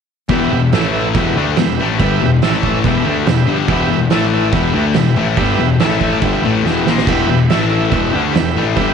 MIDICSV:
0, 0, Header, 1, 5, 480
1, 0, Start_track
1, 0, Key_signature, 1, "minor"
1, 0, Tempo, 424028
1, 331, Time_signature, 4, 2, 24, 8
1, 10117, End_track
2, 0, Start_track
2, 0, Title_t, "Transistor combo organ"
2, 0, Program_c, 0, 18
2, 340, Note_on_c, 0, 71, 101
2, 343, Note_on_c, 0, 67, 97
2, 352, Note_on_c, 0, 76, 110
2, 699, Note_off_c, 0, 71, 0
2, 700, Note_off_c, 0, 67, 0
2, 705, Note_off_c, 0, 76, 0
2, 817, Note_on_c, 0, 64, 88
2, 825, Note_on_c, 0, 76, 99
2, 830, Note_on_c, 0, 69, 82
2, 995, Note_off_c, 0, 64, 0
2, 999, Note_off_c, 0, 76, 0
2, 1001, Note_off_c, 0, 69, 0
2, 1049, Note_on_c, 0, 64, 76
2, 1049, Note_on_c, 0, 69, 69
2, 1061, Note_on_c, 0, 76, 83
2, 1231, Note_off_c, 0, 64, 0
2, 1231, Note_off_c, 0, 69, 0
2, 1237, Note_off_c, 0, 76, 0
2, 1302, Note_on_c, 0, 71, 78
2, 1304, Note_on_c, 0, 67, 88
2, 1312, Note_on_c, 0, 76, 90
2, 1659, Note_off_c, 0, 71, 0
2, 1660, Note_off_c, 0, 67, 0
2, 1664, Note_off_c, 0, 76, 0
2, 1764, Note_on_c, 0, 67, 77
2, 1768, Note_on_c, 0, 71, 69
2, 1771, Note_on_c, 0, 76, 89
2, 2130, Note_off_c, 0, 67, 0
2, 2132, Note_off_c, 0, 71, 0
2, 2133, Note_off_c, 0, 76, 0
2, 2249, Note_on_c, 0, 67, 105
2, 2257, Note_on_c, 0, 71, 102
2, 2258, Note_on_c, 0, 76, 116
2, 2612, Note_off_c, 0, 67, 0
2, 2616, Note_off_c, 0, 71, 0
2, 2617, Note_off_c, 0, 76, 0
2, 2750, Note_on_c, 0, 64, 87
2, 2753, Note_on_c, 0, 76, 103
2, 2758, Note_on_c, 0, 69, 81
2, 2920, Note_off_c, 0, 64, 0
2, 2922, Note_off_c, 0, 76, 0
2, 2925, Note_off_c, 0, 69, 0
2, 2993, Note_on_c, 0, 64, 74
2, 3000, Note_on_c, 0, 76, 87
2, 3001, Note_on_c, 0, 69, 74
2, 3162, Note_off_c, 0, 64, 0
2, 3166, Note_off_c, 0, 69, 0
2, 3166, Note_off_c, 0, 76, 0
2, 3236, Note_on_c, 0, 67, 83
2, 3240, Note_on_c, 0, 71, 73
2, 3255, Note_on_c, 0, 76, 97
2, 3585, Note_off_c, 0, 67, 0
2, 3587, Note_off_c, 0, 71, 0
2, 3595, Note_off_c, 0, 76, 0
2, 3678, Note_on_c, 0, 67, 82
2, 3691, Note_on_c, 0, 71, 77
2, 3698, Note_on_c, 0, 76, 93
2, 4046, Note_off_c, 0, 67, 0
2, 4053, Note_off_c, 0, 71, 0
2, 4056, Note_off_c, 0, 76, 0
2, 4171, Note_on_c, 0, 67, 107
2, 4175, Note_on_c, 0, 76, 120
2, 4177, Note_on_c, 0, 71, 104
2, 4533, Note_off_c, 0, 67, 0
2, 4535, Note_off_c, 0, 76, 0
2, 4536, Note_off_c, 0, 71, 0
2, 4656, Note_on_c, 0, 64, 89
2, 4657, Note_on_c, 0, 76, 91
2, 4658, Note_on_c, 0, 69, 83
2, 4833, Note_off_c, 0, 64, 0
2, 4834, Note_off_c, 0, 69, 0
2, 4834, Note_off_c, 0, 76, 0
2, 4906, Note_on_c, 0, 64, 82
2, 4912, Note_on_c, 0, 69, 68
2, 4912, Note_on_c, 0, 76, 86
2, 5078, Note_off_c, 0, 64, 0
2, 5081, Note_off_c, 0, 69, 0
2, 5082, Note_off_c, 0, 76, 0
2, 5143, Note_on_c, 0, 67, 79
2, 5146, Note_on_c, 0, 76, 98
2, 5149, Note_on_c, 0, 71, 75
2, 5499, Note_off_c, 0, 67, 0
2, 5501, Note_off_c, 0, 76, 0
2, 5502, Note_off_c, 0, 71, 0
2, 5606, Note_on_c, 0, 67, 82
2, 5614, Note_on_c, 0, 71, 74
2, 5623, Note_on_c, 0, 76, 84
2, 5971, Note_off_c, 0, 67, 0
2, 5975, Note_off_c, 0, 71, 0
2, 5979, Note_off_c, 0, 76, 0
2, 6080, Note_on_c, 0, 67, 109
2, 6096, Note_on_c, 0, 71, 97
2, 6098, Note_on_c, 0, 76, 127
2, 6448, Note_off_c, 0, 67, 0
2, 6456, Note_off_c, 0, 71, 0
2, 6457, Note_off_c, 0, 76, 0
2, 6565, Note_on_c, 0, 64, 81
2, 6571, Note_on_c, 0, 69, 76
2, 6575, Note_on_c, 0, 76, 92
2, 6748, Note_off_c, 0, 64, 0
2, 6751, Note_off_c, 0, 69, 0
2, 6754, Note_off_c, 0, 76, 0
2, 6824, Note_on_c, 0, 69, 70
2, 6827, Note_on_c, 0, 64, 75
2, 6834, Note_on_c, 0, 76, 85
2, 6998, Note_off_c, 0, 69, 0
2, 6999, Note_off_c, 0, 64, 0
2, 7003, Note_off_c, 0, 76, 0
2, 7039, Note_on_c, 0, 67, 74
2, 7042, Note_on_c, 0, 71, 70
2, 7050, Note_on_c, 0, 76, 86
2, 7408, Note_off_c, 0, 67, 0
2, 7410, Note_off_c, 0, 71, 0
2, 7413, Note_off_c, 0, 76, 0
2, 7526, Note_on_c, 0, 71, 75
2, 7526, Note_on_c, 0, 76, 80
2, 7531, Note_on_c, 0, 67, 74
2, 7891, Note_off_c, 0, 71, 0
2, 7892, Note_off_c, 0, 76, 0
2, 7894, Note_off_c, 0, 67, 0
2, 8009, Note_on_c, 0, 67, 106
2, 8010, Note_on_c, 0, 71, 107
2, 8019, Note_on_c, 0, 76, 118
2, 8373, Note_off_c, 0, 67, 0
2, 8374, Note_off_c, 0, 71, 0
2, 8378, Note_off_c, 0, 76, 0
2, 8486, Note_on_c, 0, 64, 90
2, 8496, Note_on_c, 0, 76, 96
2, 8497, Note_on_c, 0, 69, 80
2, 8670, Note_off_c, 0, 64, 0
2, 8675, Note_off_c, 0, 69, 0
2, 8675, Note_off_c, 0, 76, 0
2, 8709, Note_on_c, 0, 69, 67
2, 8717, Note_on_c, 0, 64, 80
2, 8727, Note_on_c, 0, 76, 85
2, 8901, Note_off_c, 0, 69, 0
2, 8905, Note_off_c, 0, 64, 0
2, 8910, Note_off_c, 0, 76, 0
2, 8939, Note_on_c, 0, 67, 82
2, 8940, Note_on_c, 0, 71, 76
2, 8948, Note_on_c, 0, 76, 98
2, 9318, Note_off_c, 0, 67, 0
2, 9319, Note_off_c, 0, 71, 0
2, 9323, Note_off_c, 0, 76, 0
2, 9407, Note_on_c, 0, 67, 83
2, 9416, Note_on_c, 0, 71, 76
2, 9431, Note_on_c, 0, 76, 90
2, 9792, Note_off_c, 0, 67, 0
2, 9797, Note_off_c, 0, 71, 0
2, 9804, Note_off_c, 0, 76, 0
2, 9905, Note_on_c, 0, 67, 112
2, 9916, Note_on_c, 0, 71, 101
2, 9919, Note_on_c, 0, 76, 127
2, 10117, Note_off_c, 0, 67, 0
2, 10117, Note_off_c, 0, 71, 0
2, 10117, Note_off_c, 0, 76, 0
2, 10117, End_track
3, 0, Start_track
3, 0, Title_t, "Distorted electric guitar"
3, 0, Program_c, 1, 30
3, 330, Note_on_c, 1, 40, 104
3, 344, Note_on_c, 1, 47, 104
3, 355, Note_on_c, 1, 52, 106
3, 563, Note_off_c, 1, 40, 0
3, 570, Note_off_c, 1, 47, 0
3, 575, Note_off_c, 1, 52, 0
3, 596, Note_on_c, 1, 40, 62
3, 600, Note_on_c, 1, 47, 74
3, 775, Note_off_c, 1, 40, 0
3, 777, Note_off_c, 1, 47, 0
3, 830, Note_on_c, 1, 45, 86
3, 839, Note_on_c, 1, 52, 99
3, 845, Note_on_c, 1, 57, 104
3, 1292, Note_off_c, 1, 45, 0
3, 1296, Note_off_c, 1, 52, 0
3, 1299, Note_off_c, 1, 57, 0
3, 1307, Note_on_c, 1, 40, 88
3, 1322, Note_on_c, 1, 47, 109
3, 1330, Note_on_c, 1, 52, 88
3, 1531, Note_off_c, 1, 40, 0
3, 1535, Note_off_c, 1, 47, 0
3, 1540, Note_on_c, 1, 50, 96
3, 1542, Note_off_c, 1, 52, 0
3, 1556, Note_on_c, 1, 57, 94
3, 1557, Note_on_c, 1, 62, 101
3, 1767, Note_off_c, 1, 50, 0
3, 1775, Note_off_c, 1, 57, 0
3, 1776, Note_off_c, 1, 62, 0
3, 1799, Note_on_c, 1, 40, 73
3, 1809, Note_on_c, 1, 47, 65
3, 1976, Note_off_c, 1, 40, 0
3, 1980, Note_off_c, 1, 47, 0
3, 2039, Note_on_c, 1, 45, 95
3, 2044, Note_on_c, 1, 52, 96
3, 2054, Note_on_c, 1, 57, 101
3, 2256, Note_off_c, 1, 45, 0
3, 2259, Note_off_c, 1, 52, 0
3, 2264, Note_off_c, 1, 57, 0
3, 2268, Note_on_c, 1, 43, 100
3, 2286, Note_on_c, 1, 50, 110
3, 2296, Note_on_c, 1, 55, 104
3, 2490, Note_off_c, 1, 43, 0
3, 2499, Note_off_c, 1, 50, 0
3, 2504, Note_off_c, 1, 55, 0
3, 2509, Note_on_c, 1, 40, 67
3, 2515, Note_on_c, 1, 47, 65
3, 2690, Note_off_c, 1, 40, 0
3, 2693, Note_off_c, 1, 47, 0
3, 2742, Note_on_c, 1, 45, 92
3, 2756, Note_on_c, 1, 52, 94
3, 2763, Note_on_c, 1, 57, 106
3, 3207, Note_off_c, 1, 45, 0
3, 3214, Note_off_c, 1, 52, 0
3, 3218, Note_off_c, 1, 57, 0
3, 3225, Note_on_c, 1, 40, 89
3, 3238, Note_on_c, 1, 47, 102
3, 3243, Note_on_c, 1, 52, 103
3, 3449, Note_off_c, 1, 40, 0
3, 3455, Note_off_c, 1, 47, 0
3, 3458, Note_off_c, 1, 52, 0
3, 3461, Note_on_c, 1, 50, 90
3, 3476, Note_on_c, 1, 57, 105
3, 3481, Note_on_c, 1, 62, 110
3, 3687, Note_off_c, 1, 50, 0
3, 3694, Note_off_c, 1, 57, 0
3, 3696, Note_off_c, 1, 62, 0
3, 3703, Note_on_c, 1, 40, 63
3, 3711, Note_on_c, 1, 47, 81
3, 3887, Note_off_c, 1, 40, 0
3, 3891, Note_off_c, 1, 47, 0
3, 3928, Note_on_c, 1, 43, 90
3, 3940, Note_on_c, 1, 50, 93
3, 3948, Note_on_c, 1, 55, 110
3, 4159, Note_off_c, 1, 43, 0
3, 4164, Note_on_c, 1, 40, 97
3, 4166, Note_off_c, 1, 50, 0
3, 4170, Note_off_c, 1, 55, 0
3, 4185, Note_on_c, 1, 47, 105
3, 4193, Note_on_c, 1, 52, 107
3, 4393, Note_off_c, 1, 40, 0
3, 4396, Note_off_c, 1, 47, 0
3, 4407, Note_on_c, 1, 40, 60
3, 4410, Note_on_c, 1, 47, 78
3, 4413, Note_off_c, 1, 52, 0
3, 4599, Note_off_c, 1, 40, 0
3, 4600, Note_off_c, 1, 47, 0
3, 4647, Note_on_c, 1, 45, 97
3, 4660, Note_on_c, 1, 52, 96
3, 4661, Note_on_c, 1, 57, 109
3, 5118, Note_on_c, 1, 40, 92
3, 5120, Note_off_c, 1, 45, 0
3, 5126, Note_off_c, 1, 52, 0
3, 5127, Note_off_c, 1, 57, 0
3, 5132, Note_on_c, 1, 47, 89
3, 5144, Note_on_c, 1, 52, 104
3, 5355, Note_off_c, 1, 40, 0
3, 5356, Note_off_c, 1, 47, 0
3, 5361, Note_on_c, 1, 50, 85
3, 5364, Note_off_c, 1, 52, 0
3, 5368, Note_on_c, 1, 57, 94
3, 5376, Note_on_c, 1, 62, 98
3, 5597, Note_off_c, 1, 50, 0
3, 5600, Note_off_c, 1, 57, 0
3, 5604, Note_off_c, 1, 62, 0
3, 5607, Note_on_c, 1, 40, 63
3, 5614, Note_on_c, 1, 47, 68
3, 5799, Note_off_c, 1, 40, 0
3, 5803, Note_off_c, 1, 47, 0
3, 5843, Note_on_c, 1, 45, 85
3, 5856, Note_on_c, 1, 52, 100
3, 5865, Note_on_c, 1, 57, 105
3, 6078, Note_off_c, 1, 45, 0
3, 6084, Note_off_c, 1, 52, 0
3, 6088, Note_on_c, 1, 43, 83
3, 6089, Note_off_c, 1, 57, 0
3, 6096, Note_on_c, 1, 50, 115
3, 6109, Note_on_c, 1, 55, 120
3, 6321, Note_off_c, 1, 43, 0
3, 6324, Note_off_c, 1, 50, 0
3, 6331, Note_off_c, 1, 55, 0
3, 6334, Note_on_c, 1, 40, 70
3, 6340, Note_on_c, 1, 47, 72
3, 6523, Note_off_c, 1, 40, 0
3, 6564, Note_off_c, 1, 47, 0
3, 6564, Note_on_c, 1, 45, 88
3, 6571, Note_on_c, 1, 52, 105
3, 6583, Note_on_c, 1, 57, 101
3, 7038, Note_on_c, 1, 43, 92
3, 7039, Note_off_c, 1, 45, 0
3, 7043, Note_off_c, 1, 52, 0
3, 7048, Note_on_c, 1, 50, 94
3, 7049, Note_off_c, 1, 57, 0
3, 7061, Note_on_c, 1, 55, 103
3, 7276, Note_off_c, 1, 43, 0
3, 7281, Note_off_c, 1, 50, 0
3, 7287, Note_off_c, 1, 55, 0
3, 7292, Note_on_c, 1, 45, 89
3, 7301, Note_on_c, 1, 52, 94
3, 7308, Note_on_c, 1, 57, 101
3, 7514, Note_on_c, 1, 40, 92
3, 7523, Note_off_c, 1, 45, 0
3, 7528, Note_off_c, 1, 52, 0
3, 7528, Note_on_c, 1, 47, 99
3, 7531, Note_off_c, 1, 57, 0
3, 7541, Note_on_c, 1, 52, 102
3, 7754, Note_off_c, 1, 40, 0
3, 7761, Note_off_c, 1, 47, 0
3, 7768, Note_off_c, 1, 52, 0
3, 7769, Note_on_c, 1, 46, 86
3, 7779, Note_on_c, 1, 53, 94
3, 7787, Note_on_c, 1, 58, 105
3, 8002, Note_off_c, 1, 46, 0
3, 8007, Note_off_c, 1, 53, 0
3, 8009, Note_on_c, 1, 40, 94
3, 8011, Note_off_c, 1, 58, 0
3, 8019, Note_on_c, 1, 47, 102
3, 8033, Note_on_c, 1, 52, 95
3, 8242, Note_off_c, 1, 40, 0
3, 8242, Note_off_c, 1, 47, 0
3, 8254, Note_off_c, 1, 52, 0
3, 8255, Note_on_c, 1, 40, 64
3, 8255, Note_on_c, 1, 47, 80
3, 8444, Note_off_c, 1, 40, 0
3, 8444, Note_off_c, 1, 47, 0
3, 8490, Note_on_c, 1, 45, 92
3, 8504, Note_on_c, 1, 52, 102
3, 8514, Note_on_c, 1, 57, 104
3, 8963, Note_off_c, 1, 45, 0
3, 8966, Note_on_c, 1, 40, 90
3, 8970, Note_off_c, 1, 52, 0
3, 8975, Note_off_c, 1, 57, 0
3, 8981, Note_on_c, 1, 47, 103
3, 8983, Note_on_c, 1, 52, 102
3, 9200, Note_off_c, 1, 40, 0
3, 9208, Note_off_c, 1, 47, 0
3, 9209, Note_off_c, 1, 52, 0
3, 9214, Note_on_c, 1, 50, 92
3, 9221, Note_on_c, 1, 57, 94
3, 9227, Note_on_c, 1, 62, 95
3, 9445, Note_off_c, 1, 50, 0
3, 9448, Note_off_c, 1, 57, 0
3, 9451, Note_off_c, 1, 62, 0
3, 9453, Note_on_c, 1, 40, 62
3, 9456, Note_on_c, 1, 47, 66
3, 9644, Note_off_c, 1, 40, 0
3, 9645, Note_off_c, 1, 47, 0
3, 9695, Note_on_c, 1, 45, 93
3, 9708, Note_on_c, 1, 52, 91
3, 9712, Note_on_c, 1, 57, 99
3, 9925, Note_off_c, 1, 45, 0
3, 9932, Note_off_c, 1, 52, 0
3, 9934, Note_off_c, 1, 57, 0
3, 9938, Note_on_c, 1, 43, 96
3, 9952, Note_on_c, 1, 50, 92
3, 9953, Note_on_c, 1, 55, 101
3, 10117, Note_off_c, 1, 43, 0
3, 10117, Note_off_c, 1, 50, 0
3, 10117, Note_off_c, 1, 55, 0
3, 10117, End_track
4, 0, Start_track
4, 0, Title_t, "Picked electric bass"
4, 0, Program_c, 2, 34
4, 326, Note_on_c, 2, 28, 96
4, 551, Note_off_c, 2, 28, 0
4, 575, Note_on_c, 2, 28, 74
4, 795, Note_off_c, 2, 28, 0
4, 823, Note_on_c, 2, 33, 98
4, 1263, Note_off_c, 2, 33, 0
4, 1297, Note_on_c, 2, 28, 89
4, 1516, Note_off_c, 2, 28, 0
4, 1536, Note_on_c, 2, 38, 90
4, 1756, Note_off_c, 2, 38, 0
4, 1778, Note_on_c, 2, 28, 76
4, 1996, Note_off_c, 2, 28, 0
4, 2023, Note_on_c, 2, 33, 91
4, 2239, Note_off_c, 2, 33, 0
4, 2258, Note_on_c, 2, 31, 92
4, 2476, Note_off_c, 2, 31, 0
4, 2508, Note_on_c, 2, 28, 80
4, 2722, Note_off_c, 2, 28, 0
4, 2751, Note_on_c, 2, 33, 87
4, 3186, Note_off_c, 2, 33, 0
4, 3217, Note_on_c, 2, 28, 97
4, 3436, Note_off_c, 2, 28, 0
4, 3461, Note_on_c, 2, 38, 99
4, 3677, Note_off_c, 2, 38, 0
4, 3704, Note_on_c, 2, 28, 86
4, 3919, Note_off_c, 2, 28, 0
4, 3936, Note_on_c, 2, 31, 88
4, 4155, Note_off_c, 2, 31, 0
4, 4176, Note_on_c, 2, 28, 96
4, 4395, Note_off_c, 2, 28, 0
4, 4429, Note_on_c, 2, 28, 74
4, 4642, Note_off_c, 2, 28, 0
4, 4648, Note_on_c, 2, 33, 97
4, 5094, Note_off_c, 2, 33, 0
4, 5123, Note_on_c, 2, 28, 93
4, 5348, Note_off_c, 2, 28, 0
4, 5365, Note_on_c, 2, 38, 90
4, 5589, Note_off_c, 2, 38, 0
4, 5615, Note_on_c, 2, 28, 81
4, 5835, Note_off_c, 2, 28, 0
4, 5845, Note_on_c, 2, 33, 85
4, 6070, Note_off_c, 2, 33, 0
4, 6079, Note_on_c, 2, 31, 97
4, 6303, Note_off_c, 2, 31, 0
4, 6309, Note_on_c, 2, 28, 85
4, 6541, Note_off_c, 2, 28, 0
4, 6547, Note_on_c, 2, 33, 81
4, 7003, Note_off_c, 2, 33, 0
4, 7043, Note_on_c, 2, 31, 94
4, 7261, Note_off_c, 2, 31, 0
4, 7268, Note_on_c, 2, 33, 94
4, 7501, Note_off_c, 2, 33, 0
4, 7508, Note_on_c, 2, 28, 94
4, 7741, Note_off_c, 2, 28, 0
4, 7746, Note_on_c, 2, 34, 92
4, 7980, Note_off_c, 2, 34, 0
4, 8001, Note_on_c, 2, 28, 96
4, 8224, Note_off_c, 2, 28, 0
4, 8231, Note_on_c, 2, 28, 80
4, 8463, Note_off_c, 2, 28, 0
4, 8472, Note_on_c, 2, 33, 88
4, 8927, Note_off_c, 2, 33, 0
4, 8962, Note_on_c, 2, 28, 96
4, 9189, Note_off_c, 2, 28, 0
4, 9206, Note_on_c, 2, 38, 97
4, 9431, Note_off_c, 2, 38, 0
4, 9453, Note_on_c, 2, 28, 83
4, 9672, Note_off_c, 2, 28, 0
4, 9679, Note_on_c, 2, 33, 92
4, 9907, Note_off_c, 2, 33, 0
4, 9924, Note_on_c, 2, 31, 86
4, 10117, Note_off_c, 2, 31, 0
4, 10117, End_track
5, 0, Start_track
5, 0, Title_t, "Drums"
5, 320, Note_on_c, 9, 49, 60
5, 331, Note_on_c, 9, 36, 118
5, 434, Note_off_c, 9, 49, 0
5, 445, Note_off_c, 9, 36, 0
5, 819, Note_on_c, 9, 49, 69
5, 829, Note_on_c, 9, 38, 120
5, 932, Note_off_c, 9, 49, 0
5, 942, Note_off_c, 9, 38, 0
5, 1299, Note_on_c, 9, 36, 110
5, 1300, Note_on_c, 9, 49, 59
5, 1412, Note_off_c, 9, 36, 0
5, 1413, Note_off_c, 9, 49, 0
5, 1771, Note_on_c, 9, 49, 65
5, 1781, Note_on_c, 9, 38, 109
5, 1884, Note_off_c, 9, 49, 0
5, 1894, Note_off_c, 9, 38, 0
5, 2259, Note_on_c, 9, 36, 103
5, 2263, Note_on_c, 9, 49, 63
5, 2373, Note_off_c, 9, 36, 0
5, 2377, Note_off_c, 9, 49, 0
5, 2738, Note_on_c, 9, 49, 64
5, 2748, Note_on_c, 9, 38, 122
5, 2851, Note_off_c, 9, 49, 0
5, 2861, Note_off_c, 9, 38, 0
5, 2979, Note_on_c, 9, 36, 84
5, 3093, Note_off_c, 9, 36, 0
5, 3217, Note_on_c, 9, 36, 106
5, 3228, Note_on_c, 9, 49, 57
5, 3330, Note_off_c, 9, 36, 0
5, 3341, Note_off_c, 9, 49, 0
5, 3696, Note_on_c, 9, 49, 58
5, 3706, Note_on_c, 9, 38, 105
5, 3809, Note_off_c, 9, 49, 0
5, 3819, Note_off_c, 9, 38, 0
5, 4170, Note_on_c, 9, 36, 111
5, 4170, Note_on_c, 9, 49, 58
5, 4283, Note_off_c, 9, 36, 0
5, 4283, Note_off_c, 9, 49, 0
5, 4641, Note_on_c, 9, 49, 58
5, 4651, Note_on_c, 9, 38, 109
5, 4754, Note_off_c, 9, 49, 0
5, 4764, Note_off_c, 9, 38, 0
5, 5120, Note_on_c, 9, 49, 65
5, 5124, Note_on_c, 9, 36, 113
5, 5234, Note_off_c, 9, 49, 0
5, 5238, Note_off_c, 9, 36, 0
5, 5591, Note_on_c, 9, 49, 64
5, 5601, Note_on_c, 9, 38, 101
5, 5704, Note_off_c, 9, 49, 0
5, 5715, Note_off_c, 9, 38, 0
5, 6075, Note_on_c, 9, 49, 61
5, 6081, Note_on_c, 9, 36, 104
5, 6189, Note_off_c, 9, 49, 0
5, 6194, Note_off_c, 9, 36, 0
5, 6561, Note_on_c, 9, 49, 62
5, 6571, Note_on_c, 9, 38, 119
5, 6674, Note_off_c, 9, 49, 0
5, 6684, Note_off_c, 9, 38, 0
5, 6800, Note_on_c, 9, 36, 84
5, 6914, Note_off_c, 9, 36, 0
5, 7038, Note_on_c, 9, 49, 62
5, 7040, Note_on_c, 9, 36, 116
5, 7151, Note_off_c, 9, 49, 0
5, 7153, Note_off_c, 9, 36, 0
5, 7539, Note_on_c, 9, 38, 60
5, 7652, Note_off_c, 9, 38, 0
5, 7775, Note_on_c, 9, 38, 90
5, 7888, Note_off_c, 9, 38, 0
5, 7904, Note_on_c, 9, 38, 87
5, 8005, Note_on_c, 9, 36, 118
5, 8016, Note_on_c, 9, 49, 56
5, 8016, Note_on_c, 9, 57, 100
5, 8017, Note_off_c, 9, 38, 0
5, 8118, Note_off_c, 9, 36, 0
5, 8129, Note_off_c, 9, 49, 0
5, 8129, Note_off_c, 9, 57, 0
5, 8485, Note_on_c, 9, 49, 65
5, 8495, Note_on_c, 9, 38, 108
5, 8598, Note_off_c, 9, 49, 0
5, 8609, Note_off_c, 9, 38, 0
5, 8963, Note_on_c, 9, 36, 111
5, 8966, Note_on_c, 9, 49, 61
5, 9077, Note_off_c, 9, 36, 0
5, 9079, Note_off_c, 9, 49, 0
5, 9450, Note_on_c, 9, 49, 61
5, 9461, Note_on_c, 9, 38, 114
5, 9564, Note_off_c, 9, 49, 0
5, 9574, Note_off_c, 9, 38, 0
5, 9924, Note_on_c, 9, 36, 104
5, 9925, Note_on_c, 9, 49, 64
5, 10037, Note_off_c, 9, 36, 0
5, 10038, Note_off_c, 9, 49, 0
5, 10117, End_track
0, 0, End_of_file